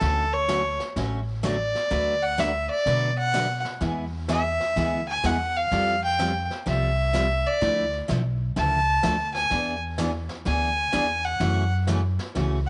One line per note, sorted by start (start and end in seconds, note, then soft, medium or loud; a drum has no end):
0.00 0.77 D2 medium
0.00 0.23 D3 medium
0.00 0.24 F#3 medium
0.00 0.24 A3 medium
0.00 0.24 C#4 medium
0.00 0.24 F#4 medium
0.00 0.34 A4 medium
0.00 brush sweep medium
0.00 snare soft
0.33 0.80 C#5 medium
0.48 0.61 D3 medium
0.48 0.61 F#3 medium
0.48 0.61 A3 medium
0.48 0.61 C#4 medium
0.48 0.61 F#4 medium
0.48 snare medium
0.48 hi-hat pedal medium
0.80 snare soft
0.96 1.72 A1 medium
0.96 1.19 D3 medium
0.96 1.19 F#3 medium
0.96 1.19 A3 medium
0.96 1.19 C#4 medium
0.96 1.20 F#4 medium
0.96 brush sweep soft
0.96 snare soft
1.43 1.55 D3 medium
1.43 1.55 F#3 medium
1.43 1.56 A3 medium
1.43 1.56 C#4 medium
1.43 1.56 F#4 medium
1.43 2.24 D5 medium
1.43 snare medium
1.43 hi-hat pedal medium
1.75 snare soft
1.91 2.67 D2 medium
1.91 2.13 D3 medium
1.91 2.14 F#3 medium
1.91 2.13 A3 medium
1.91 2.14 D4 medium
1.91 2.14 F#4 medium
1.91 2.14 B4 medium
1.91 brush sweep medium
1.91 snare soft
2.23 2.41 F#5 loud
2.38 2.50 D3 medium
2.38 2.50 F#3 medium
2.38 2.50 A3 medium
2.38 2.50 D4 medium
2.38 2.51 F#4 medium
2.38 2.51 B4 medium
2.38 2.70 E5 medium
2.38 snare medium
2.38 hi-hat pedal medium
2.70 3.15 D5 medium
2.86 3.62 B2 medium
2.86 3.09 D3 medium
2.86 3.09 F#3 medium
2.86 3.09 A3 medium
2.86 3.09 D4 medium
2.86 3.09 F#4 medium
2.86 3.09 B4 medium
2.86 brush sweep soft
2.86 snare soft
3.19 3.63 F#5 loud
3.34 3.46 D3 medium
3.34 3.46 F#3 medium
3.34 3.46 A3 medium
3.34 3.46 D4 medium
3.34 3.46 F#4 medium
3.34 3.46 B4 medium
3.34 snare medium
3.34 hi-hat pedal medium
3.65 snare soft
3.81 4.57 E2 medium
3.81 4.03 E3 medium
3.81 4.04 G#3 medium
3.81 4.04 B3 medium
3.81 4.04 E4 medium
3.81 4.04 G#4 medium
3.81 brush sweep soft
3.81 snare soft
4.28 4.41 E3 medium
4.28 4.41 G#3 medium
4.28 4.41 B3 medium
4.28 4.41 E4 medium
4.28 4.41 G#4 medium
4.28 5.05 E5 medium
4.28 snare medium
4.28 hi-hat pedal medium
4.60 snare soft
4.76 5.17 D2 medium
4.76 4.99 E3 medium
4.76 4.99 G#3 medium
4.76 4.99 B3 medium
4.76 4.99 E4 medium
4.76 5.00 G#4 medium
4.76 brush sweep soft
4.76 snare soft
5.09 5.28 G#5 medium
5.24 5.64 E2 medium
5.24 5.36 E3 medium
5.24 5.36 G#3 medium
5.24 5.36 B3 medium
5.24 5.36 E4 medium
5.24 5.36 G#4 medium
5.24 5.58 F#5 medium
5.24 snare medium
5.24 hi-hat pedal medium
5.57 6.03 F5 loud
5.71 6.47 F2 medium
5.71 5.94 F3 medium
5.71 5.94 G3 medium
5.71 5.95 C4 medium
5.71 5.94 F4 medium
5.71 5.95 A4 medium
5.71 brush sweep soft
5.71 snare soft
6.04 6.48 G5 loud
6.19 6.31 F3 medium
6.19 6.31 G3 medium
6.19 6.31 C4 medium
6.19 6.31 F4 medium
6.19 6.31 A4 medium
6.19 snare medium
6.19 hi-hat pedal soft
6.51 snare soft
6.66 7.42 C2 medium
6.66 6.89 F3 medium
6.66 6.89 G3 medium
6.66 6.89 C4 medium
6.66 6.89 F4 medium
6.66 6.89 A4 medium
6.66 7.48 E5 medium
6.66 brush sweep soft
6.66 snare soft
7.13 7.25 F3 medium
7.13 7.26 G3 medium
7.13 7.26 C4 medium
7.13 7.26 F4 medium
7.13 7.26 A4 medium
7.13 snare medium
7.13 hi-hat pedal medium
7.46 7.93 D5 medium
7.61 7.99 D2 medium
7.61 7.84 D3 medium
7.61 7.84 F3 medium
7.61 7.84 A3 medium
7.61 7.84 E4 medium
7.61 brush sweep soft
7.61 snare soft
8.08 8.49 B1 medium
8.08 8.20 D3 medium
8.08 8.20 F3 medium
8.08 8.21 A3 medium
8.08 8.21 E4 medium
8.08 snare medium
8.08 hi-hat pedal soft
8.56 8.97 C#2 medium
8.56 8.79 D3 medium
8.56 8.79 F3 medium
8.56 8.79 A3 medium
8.56 8.79 E4 medium
8.56 9.32 A5 loud
8.56 brush sweep soft
8.56 snare soft
9.03 9.44 D2 medium
9.03 9.15 D3 medium
9.03 9.15 F3 medium
9.03 9.15 A3 medium
9.03 9.16 E4 medium
9.03 snare medium
9.03 hi-hat pedal medium
9.34 9.79 G#5 loud
9.34 snare soft
9.50 10.27 E2 medium
9.50 9.73 E3 medium
9.50 9.74 B3 medium
9.50 9.74 D4 medium
9.50 9.74 G#4 medium
9.50 brush sweep soft
9.50 snare soft
9.98 10.10 E3 medium
9.98 10.10 B3 medium
9.98 10.10 D4 medium
9.98 10.11 G#4 medium
9.98 snare medium
9.98 hi-hat pedal medium
10.29 snare soft
10.45 10.86 D2 medium
10.45 10.68 E3 medium
10.45 10.68 B3 medium
10.45 10.69 D4 medium
10.45 10.69 G#4 medium
10.45 11.26 G#5 loud
10.45 brush sweep soft
10.45 snare soft
10.92 11.34 E2 medium
10.92 11.05 E3 medium
10.92 11.05 B3 medium
10.92 11.05 D4 medium
10.92 11.05 G#4 medium
10.92 snare medium
10.92 hi-hat pedal medium
11.25 11.72 F#5 loud
11.40 12.16 F#2 medium
11.40 11.63 C#3 medium
11.40 11.63 E3 medium
11.40 11.63 A3 medium
11.40 11.63 C#4 medium
11.40 11.63 F#4 medium
11.40 brush sweep medium
11.40 snare soft
11.87 12.00 C#3 medium
11.87 12.00 E3 medium
11.87 12.00 A3 medium
11.87 12.00 C#4 medium
11.87 12.00 F#4 medium
11.87 snare medium
11.87 hi-hat pedal medium
12.19 snare soft
12.35 12.69 C#2 medium
12.35 12.58 C#3 medium
12.35 12.58 E3 medium
12.35 12.58 A3 medium
12.35 12.58 C#4 medium
12.35 12.58 F#4 medium
12.35 brush sweep soft
12.35 snare soft